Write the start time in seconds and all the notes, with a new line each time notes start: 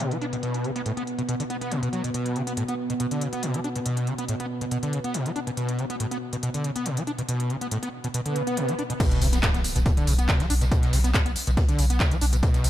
Already playing: B2 B3
0.00 B2, closed hi-hat
0.11 F#3, closed hi-hat
0.21 D4, closed hi-hat
0.33 B2, closed hi-hat
0.43 B2, closed hi-hat
0.54 closed hi-hat
0.64 C#3, closed hi-hat
0.76 B3, closed hi-hat
0.86 A2, closed hi-hat
0.97 B3, closed hi-hat
1.07 closed hi-hat
1.18 B2, closed hi-hat
1.28 B2, closed hi-hat
1.40 D3, closed hi-hat
1.50 B3, closed hi-hat
1.61 B3, closed hi-hat
1.71 B2, closed hi-hat
1.83 B2, closed hi-hat
1.93 F#3, closed hi-hat
2.04 B2, closed hi-hat
2.14 B2, closed hi-hat
2.26 closed hi-hat
2.36 C#3, closed hi-hat
2.47 B3, closed hi-hat
2.57 A2, closed hi-hat
2.68 B3, closed hi-hat
2.90 B2, closed hi-hat
3.00 B2, closed hi-hat
3.11 D3, closed hi-hat
3.21 C#3, closed hi-hat
3.33 B3, closed hi-hat
3.43 B2, closed hi-hat
3.54 F#3, closed hi-hat
3.64 D4, closed hi-hat
3.76 B2, closed hi-hat
3.86 B2, closed hi-hat
3.97 closed hi-hat
4.07 C#3, closed hi-hat
4.18 B3, closed hi-hat
4.29 A2, closed hi-hat
4.40 B3, closed hi-hat
4.61 B2, closed hi-hat
4.71 B2, closed hi-hat
4.83 D3, closed hi-hat
4.93 C#3, closed hi-hat
5.04 B3, closed hi-hat
5.14 B2, closed hi-hat
5.26 F#3, closed hi-hat
5.36 D4, closed hi-hat
5.47 B2, closed hi-hat
5.57 B2, closed hi-hat
5.69 closed hi-hat
5.79 C#3, closed hi-hat
5.90 B3, closed hi-hat
6.00 A2, closed hi-hat
6.11 B3, closed hi-hat
6.33 B2, closed hi-hat
6.43 B2, closed hi-hat
6.54 D3, closed hi-hat
6.64 C#3, closed hi-hat
6.76 B3, closed hi-hat
6.86 B2, closed hi-hat
6.97 F#3, closed hi-hat
7.07 D4, closed hi-hat
7.18 B2, closed hi-hat
7.29 B2, closed hi-hat
7.40 closed hi-hat
7.50 C#3, closed hi-hat
7.61 B3, closed hi-hat
7.71 A2, closed hi-hat
7.83 B3, closed hi-hat
8.04 B2, closed hi-hat
8.14 B2, closed hi-hat, swell
8.26 D3, closed hi-hat
8.36 C#3, closed hi-hat
8.47 B3, closed hi-hat
8.57 B2, closed hi-hat
8.68 F#3, closed hi-hat
8.79 D4, closed hi-hat
8.90 B2, closed hi-hat
9.00 B2, kick, closed hi-hat, crash, tambourine, impact
9.11 snare, closed hi-hat, tambourine
9.21 B1 C#3, closed hi-hat, open hi-hat, tambourine
9.33 B1 B3, snare, closed hi-hat, tambourine
9.43 A2, kick, snare, clap, closed hi-hat, tambourine
9.54 B1 B3, snare, closed hi-hat, tambourine
9.64 closed hi-hat, open hi-hat, tambourine
9.76 B1 B2, closed hi-hat, tambourine
9.86 B2, kick, closed hi-hat, tambourine
9.97 D3, closed hi-hat, tambourine
10.07 B1 C#3, closed hi-hat, open hi-hat, tambourine
10.18 B1 B3, closed hi-hat, tambourine
10.28 B2, kick, snare, clap, closed hi-hat, tambourine
10.40 B1 F#3, snare, closed hi-hat, tambourine
10.50 B1 D4, closed hi-hat, open hi-hat, tambourine
10.61 B1 B2, snare, closed hi-hat, tambourine
10.71 B2, kick, closed hi-hat, tambourine
10.83 snare, closed hi-hat, tambourine
10.93 B1 C#3, snare, closed hi-hat, open hi-hat, tambourine
11.04 B1 B3, snare, closed hi-hat, tambourine
11.14 A2, kick, snare, clap, closed hi-hat, tambourine
11.26 B1 B3, closed hi-hat, tambourine
11.36 closed hi-hat, open hi-hat, tambourine
11.47 B1 B2, closed hi-hat, tambourine
11.57 B2, kick, closed hi-hat, open hi-hat, tambourine
11.69 D3, closed hi-hat, tambourine
11.79 B1 C#3, closed hi-hat, open hi-hat, tambourine
11.90 B1 B3, closed hi-hat, tambourine
12.00 B2, kick, snare, clap, closed hi-hat, tambourine
12.11 B1 F#3, closed hi-hat, tambourine
12.21 B1 D4, closed hi-hat, open hi-hat, tambourine
12.33 B1 B2, closed hi-hat, tambourine
12.43 B2, kick, closed hi-hat, tambourine
12.54 snare, closed hi-hat, tambourine
12.64 B1 C#3, closed hi-hat, open hi-hat, tambourine